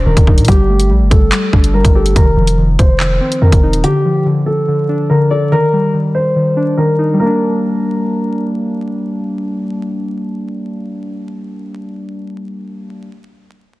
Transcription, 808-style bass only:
0.06 D#1
0.17 D#1
0.38 A#2
0.48 G1
0.90 A#1
1.01 G1
1.11 G1
1.53 G1
1.85 G1
2.16 F1
2.37 F1
2.79 F1
3.42 F2
3.52 F1
3.73 D#1

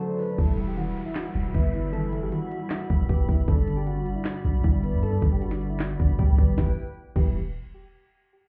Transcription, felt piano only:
Already playing: D3 F#3 D4
0.00 A3
0.19 D4
0.38 E3
0.58 G3
0.77 E3
1.35 G3
1.54 B3
1.74 E4
1.93 E3
2.12 G3
2.32 E3
2.90 G3
3.09 B3
3.29 E4
3.48 G2
3.67 D3
3.87 G2
4.44 D3
4.64 G3
4.83 B3
5.03 G2
5.22 D3
5.42 G2
5.99 D3
6.19 G3
6.38 B3
6.58 E3 G3 B3 E4
7.16 E3 G3 B3 E4

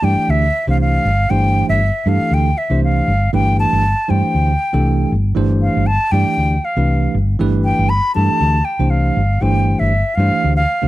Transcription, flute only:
0.04 G5
0.30 E5
0.70 F5
0.81 F5
1.30 G5
1.69 E5
2.08 F5
2.34 G5
2.58 E5
2.84 F5
3.34 G5
3.60 A5
4.10 G5
5.62 F5
5.87 A5
6.12 G5
6.65 F5
7.64 G5
7.89 B5
8.15 A5
8.65 G5
8.90 F5
9.42 G5
9.79 E5
10.15 F5
10.56 F5

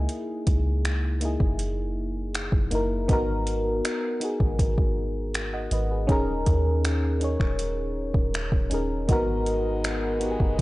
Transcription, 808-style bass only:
0.47 C#2
1.40 F#1
2.52 F#1
2.72 F#1
3.09 G#1
4.40 G#1
5.71 G#1
6.47 D#2
7.40 D#1
8.14 D#1
8.52 D#1
8.71 D#1
9.09 G#1
10.40 F#1

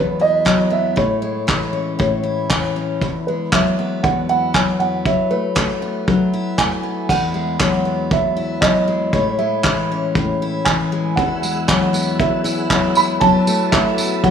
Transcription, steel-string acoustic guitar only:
Already playing: E2 F#3 G#3 B3
0.20 E4
0.45 F#3
0.70 B3
0.96 A2
1.22 G#3
1.47 E3
1.73 C#4
1.99 A2
2.23 E4
2.50 E3
2.76 C#4
3.02 E2
3.28 G#3
3.52 F#3
3.79 B3
4.04 E2
4.29 E4
4.54 F#3
4.80 B3
5.06 F#3
5.31 A3
5.55 A3
5.82 B3
6.08 F#3
6.34 E4
6.58 A3
6.83 B3
7.10 E2 E4
7.34 G#3
7.59 F#3
7.85 B3
8.11 E2
8.37 E4
8.62 F#3
8.88 G#3
9.13 A2 E4
9.39 G#3
9.65 E3
9.92 C#4
10.17 A2
10.42 E4
10.66 E3
10.92 G#3
11.19 E2 E4
11.43 G#3
11.69 F#3
11.93 B3
12.20 E2
12.44 E4
12.71 F#3
12.96 G#3
13.21 F#3 E4
13.47 A3
13.74 A3
13.99 B3
14.24 F#3

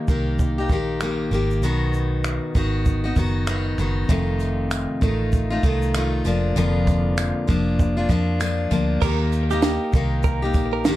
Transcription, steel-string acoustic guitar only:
0.08 D#3 A#3 D#4 G4
0.58 A#3 D#4 G4
0.70 D#3 A#3 D#4 G4
1.01 D#3 A#3 D#4 G4
1.31 D#3 A#3 D#4 G4
1.63 B2 D#3 B3 D#4 F#4
2.55 D#3 B3 D#4 F#4
3.04 B3 D#4 F#4
3.17 D#3 B3 D#4 F#4
3.47 D#3 B3 D#4 F#4
3.79 D#3 B3 D#4 F#4
4.09 F2 C3 D#3 A3 D#4 F4
5.01 D#3 A3 D#4 F4
5.50 D#3 A3 D#4 F4
5.64 D#3 A3 D#4 F4
5.94 D#3 A3 D#4 F4
6.25 F3 A#3 D4 F4
6.56 F2 D3 F3 A#3 D4 F4
7.47 F3 A#3 D4 F4
7.97 F3 A#3 D4 F4
8.09 F3 A#3 D4 F4
8.40 F3 A#3 D4 F4
8.71 F3 A#3 D4 F4
9.01 D#3 A#3 D#4 G4
9.50 A#3 D#4 G4
9.94 D#3 A#3 D#4 G4
10.42 A#3 D#4 G4
10.85 D#3 A#3 D#4 G4

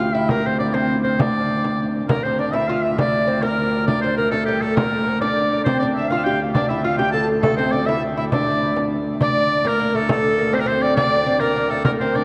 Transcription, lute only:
0.00 F4
0.15 E4
0.31 A#3
0.46 C4
0.60 D4
0.74 C4
1.04 C4
1.19 D4
2.09 A#3
2.25 C4
2.39 D4
2.55 E4
2.69 F4
2.99 D4
3.27 C4
3.42 A#3
3.88 D4
4.04 C4
4.17 A#3
4.33 A3
4.48 G3
4.62 A3
4.77 A#3
5.22 D4
5.67 C4
5.82 D4
6.12 F4
6.26 G4
6.56 D4
6.70 E4
6.84 F4
6.99 G4
7.13 A4
7.43 A3
7.58 C4
7.73 D4
7.88 E4
8.17 E4
8.34 D4
9.22 D4
9.65 A#3
9.80 A#3
9.95 A3
10.09 A3
10.38 A#3
10.53 C4
10.66 C4
10.97 D4
11.26 C4
11.41 A#3
11.56 A#3
11.71 A3
11.85 A#3
12.01 C4
12.15 D4

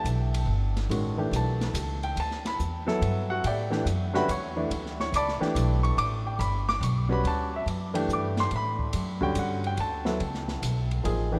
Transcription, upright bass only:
0.04 B1
0.46 G1
0.89 A1
1.31 B1
1.74 C#2
2.16 D2
2.59 E2
3.01 G2
3.44 A2
3.85 F#2
4.28 E2
4.70 D2
5.12 C#2
5.41 muted upright bass stroke
5.55 B1
5.97 A1
6.39 G1
6.81 B1
7.24 D2
7.66 F#2
8.08 G2
8.51 A2
8.93 F#2
9.35 G2
9.78 D2
10.20 C#2
10.62 B1
11.05 A1

